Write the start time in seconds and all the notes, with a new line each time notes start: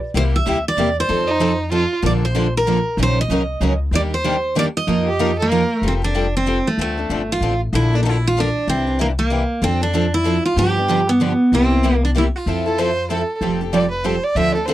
0.14 C2 C3 G3 A#3 E4 G4 C5
0.36 E5
0.47 D2 C3 G3 A#3 E4 G4
0.68 D5
0.77 E2 C3 G3 A#3 E4 G4
1.00 C5
1.09 F2 F3 C4 D#4 A4
1.27 D#4
1.40 F3 C4 D#4 A4
1.72 F3 C4 D#4 F4 A4
2.02 A#1 D3 F3 A#3 D4 A4 D5
2.25 C5
2.35 D3 F3 A#3 D4 A4
2.57 A#4
2.67 D3 F3 A#3 D4 A4
2.97 A#1 C#3 F#3 C#4 D#4 A#4
3.03 C5
3.21 D#5
3.29 C2 C#3 F#3 C#4 D#4
3.33 A#4
3.60 C#2 C#3 F#3 C#4 D#4 A#4
3.91 D#2 D#3 G3 A#3 D4 G4
3.95 D5
4.14 C5
4.24 D#3 G3 A#3 D4 G4
4.55 D#3 G3 A#3 D4 G4 D5
4.77 D#5
4.87 F2 F3 A#3 D#4 F4 A#4
5.07 G4
5.19 F3 A#3 D#4 F4 A#4
5.39 A#3 A4
5.50 F3 A#3 D#4 F4 A#4
5.82 F1 F3 G3 C4 G4 A4
5.88 C4
6.02 C4 D4 G4 A4
6.15 F3 G3 C4 G4 A4
6.37 C4
6.46 F3 G3 C4 G4 A4
6.67 A3
6.78 D2 D3 F3 A3 C4 D4 A4
6.97 C4 D4 A4
7.09 G1 D3 F3 C4 D4 A4
7.32 F4
7.41 A1 D3 F3 C4 D4 A4
7.73 A#1 D3 F3 A#3 D4 E4 A4
7.93 A#3 D4 A4
8.03 D3 F3 A#3 D4 D#4 A4
8.09 E4
8.27 F4
8.37 D3 F3 A#3 D4 A4
8.68 C2 C3 E3 C4 D4 G4
8.87 E3 D4 G4
8.99 C3 E3 A#3 D4 G4
9.19 A#3
9.30 C3 E3 D4 G4
9.62 F2 F3 C4 D4 A4
9.81 C4 D4 A4
9.94 F3 C4 D4 A4
10.14 E4
10.24 F3 C4 D4 A4
10.45 F4
10.56 G2 D3 F3 B3 D4 G4
10.77 B3 D4 G4
10.89 D3 F3 B3 D4 G4
11.09 B3
11.20 D3 F3 B3 D4 G4
11.52 C2 C3 G3 A#3 C4 E4 G4
11.70 A#3 E4 G4
11.83 C3 G3 A#3 E4 G4
12.05 D4
12.15 C3 G3 A#3 E4 G4
12.36 F4
12.46 F2 F3 C4 E4 A4
12.66 C4 E4 A4
12.78 F3 C4 E4 A4 C5
13.10 F3 C4 E4 A4
13.41 F1 F3 G3 C4 G4 A4
13.61 C4 G4 A4
13.73 F3 G3 C4 G4 A4 D5
13.91 B4
14.04 F3 G3 C4 G4 A4 C5
14.24 D5
14.35 D2 D3 F3 C4 D4 A4 E5
14.55 C4 D4 A4
14.65 D3 F3 C4 D4 A4 C5